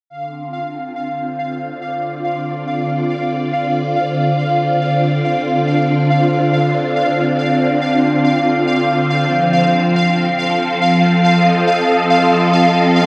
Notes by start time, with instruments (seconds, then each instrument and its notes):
0.10 string machine D3, synth texture F5
0.25 string machine C4
0.44 string machine F4
1.67 string machine D5
9.24 string machine F3
10.35 string machine A4
11.33 string machine D#5